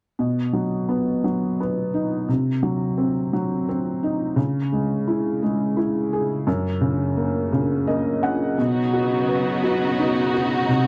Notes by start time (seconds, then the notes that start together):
0.19 B2
0.53 F#3
0.89 B3
1.24 F#3
1.60 B3
1.94 D#4
2.28 C3
2.63 F#3
2.97 C4
3.33 F#3
3.69 C4
4.03 D#4
4.36 C#3
4.72 G#3
5.08 E4
5.43 G#3
5.77 E4
6.13 G#4
6.47 F#2
6.81 C#3
7.17 A#3
7.52 C#3
7.87 A#3 D#5
8.22 C#4 F#5
8.58 B2 C#3 F#3 B3 D#4 F#4
8.93 F#4
9.28 B4
9.64 F#4
9.98 D#4
10.34 F#4
10.67 C3 F#3 G#3